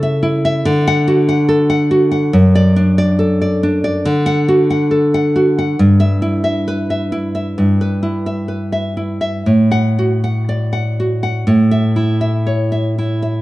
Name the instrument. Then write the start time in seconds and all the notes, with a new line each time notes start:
nylon-string guitar
Already playing: C#3 E4 A4
0.03 E5
0.23 E4
0.45 E5
0.65 D3
0.88 F#5
1.08 F#4
1.29 F#5
1.49 A4
1.70 F#5
1.91 F#4
2.11 F#5
2.33 F#2
2.55 D5
2.76 D4
2.98 D5
3.19 A4
3.42 D5
3.63 D4
3.84 D5
4.05 D3
4.26 F#5
4.48 F#4
4.70 F#5
4.91 A4
5.14 F#5
5.36 F#4
5.59 F#5
5.79 G2
6.00 E5
6.22 E4
6.44 E5
6.68 B4
6.90 E5
7.12 E4
7.35 E5
7.58 G2
7.81 B4
8.03 E4
8.26 E5
8.48 B4
8.72 E5
8.97 E4
9.21 E5
9.46 A2
9.71 F#5
9.99 F#4
10.24 F#5
10.49 D5
10.73 F#5
11.00 F#4
11.23 F#5
11.47 A2
11.71 E5
11.96 E4
12.21 E5
12.47 C#5
12.72 E5
12.98 E4
13.22 E5